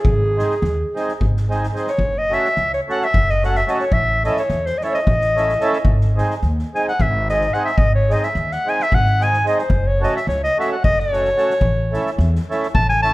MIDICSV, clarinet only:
0, 0, Header, 1, 2, 480
1, 0, Start_track
1, 0, Tempo, 551978
1, 44, Time_signature, 7, 3, 24, 8
1, 6764, Tempo, 546946
1, 11464, End_track
2, 0, Start_track
2, 0, Title_t, "Clarinet"
2, 0, Program_c, 0, 71
2, 0, Note_on_c, 0, 68, 77
2, 1151, Note_off_c, 0, 68, 0
2, 1546, Note_on_c, 0, 72, 65
2, 1630, Note_off_c, 0, 72, 0
2, 1639, Note_on_c, 0, 73, 88
2, 1898, Note_on_c, 0, 75, 95
2, 1911, Note_off_c, 0, 73, 0
2, 2029, Note_on_c, 0, 76, 106
2, 2042, Note_off_c, 0, 75, 0
2, 2375, Note_off_c, 0, 76, 0
2, 2380, Note_on_c, 0, 73, 80
2, 2441, Note_off_c, 0, 73, 0
2, 2532, Note_on_c, 0, 78, 83
2, 2644, Note_on_c, 0, 76, 92
2, 2657, Note_off_c, 0, 78, 0
2, 2871, Note_on_c, 0, 75, 85
2, 2884, Note_off_c, 0, 76, 0
2, 2991, Note_off_c, 0, 75, 0
2, 3003, Note_on_c, 0, 78, 89
2, 3102, Note_on_c, 0, 76, 97
2, 3115, Note_off_c, 0, 78, 0
2, 3175, Note_off_c, 0, 76, 0
2, 3175, Note_on_c, 0, 76, 73
2, 3217, Note_on_c, 0, 75, 67
2, 3230, Note_off_c, 0, 76, 0
2, 3300, Note_off_c, 0, 75, 0
2, 3306, Note_on_c, 0, 73, 91
2, 3417, Note_on_c, 0, 76, 116
2, 3430, Note_off_c, 0, 73, 0
2, 3691, Note_off_c, 0, 76, 0
2, 3696, Note_on_c, 0, 75, 82
2, 3796, Note_off_c, 0, 75, 0
2, 3817, Note_on_c, 0, 73, 75
2, 4055, Note_on_c, 0, 72, 84
2, 4068, Note_off_c, 0, 73, 0
2, 4157, Note_on_c, 0, 75, 66
2, 4170, Note_off_c, 0, 72, 0
2, 4204, Note_on_c, 0, 73, 71
2, 4217, Note_off_c, 0, 75, 0
2, 4295, Note_off_c, 0, 73, 0
2, 4301, Note_on_c, 0, 75, 94
2, 5444, Note_off_c, 0, 75, 0
2, 5871, Note_on_c, 0, 80, 82
2, 5973, Note_off_c, 0, 80, 0
2, 5989, Note_on_c, 0, 78, 93
2, 6101, Note_on_c, 0, 76, 90
2, 6114, Note_off_c, 0, 78, 0
2, 6341, Note_off_c, 0, 76, 0
2, 6346, Note_on_c, 0, 75, 94
2, 6551, Note_on_c, 0, 78, 74
2, 6564, Note_off_c, 0, 75, 0
2, 6648, Note_off_c, 0, 78, 0
2, 6653, Note_on_c, 0, 76, 94
2, 6760, Note_on_c, 0, 75, 110
2, 6773, Note_off_c, 0, 76, 0
2, 6903, Note_off_c, 0, 75, 0
2, 6912, Note_on_c, 0, 73, 82
2, 7066, Note_on_c, 0, 75, 94
2, 7079, Note_off_c, 0, 73, 0
2, 7168, Note_on_c, 0, 76, 74
2, 7181, Note_off_c, 0, 75, 0
2, 7420, Note_on_c, 0, 78, 86
2, 7433, Note_off_c, 0, 76, 0
2, 7566, Note_on_c, 0, 80, 88
2, 7579, Note_off_c, 0, 78, 0
2, 7683, Note_on_c, 0, 76, 94
2, 7696, Note_off_c, 0, 80, 0
2, 7787, Note_on_c, 0, 78, 90
2, 7800, Note_off_c, 0, 76, 0
2, 8037, Note_on_c, 0, 80, 90
2, 8050, Note_off_c, 0, 78, 0
2, 8243, Note_off_c, 0, 80, 0
2, 8252, Note_on_c, 0, 75, 71
2, 8356, Note_on_c, 0, 72, 73
2, 8369, Note_off_c, 0, 75, 0
2, 8602, Note_on_c, 0, 73, 82
2, 8616, Note_off_c, 0, 72, 0
2, 8737, Note_off_c, 0, 73, 0
2, 8745, Note_on_c, 0, 75, 75
2, 8841, Note_off_c, 0, 75, 0
2, 8855, Note_on_c, 0, 76, 73
2, 8951, Note_off_c, 0, 76, 0
2, 8963, Note_on_c, 0, 73, 77
2, 9089, Note_off_c, 0, 73, 0
2, 9099, Note_on_c, 0, 75, 98
2, 9226, Note_off_c, 0, 75, 0
2, 9239, Note_on_c, 0, 76, 72
2, 9339, Note_off_c, 0, 76, 0
2, 9346, Note_on_c, 0, 78, 74
2, 9447, Note_off_c, 0, 78, 0
2, 9453, Note_on_c, 0, 75, 104
2, 9588, Note_on_c, 0, 73, 96
2, 9601, Note_off_c, 0, 75, 0
2, 10774, Note_off_c, 0, 73, 0
2, 11125, Note_on_c, 0, 81, 105
2, 11244, Note_off_c, 0, 81, 0
2, 11254, Note_on_c, 0, 80, 99
2, 11365, Note_off_c, 0, 80, 0
2, 11370, Note_on_c, 0, 81, 107
2, 11464, Note_off_c, 0, 81, 0
2, 11464, End_track
0, 0, End_of_file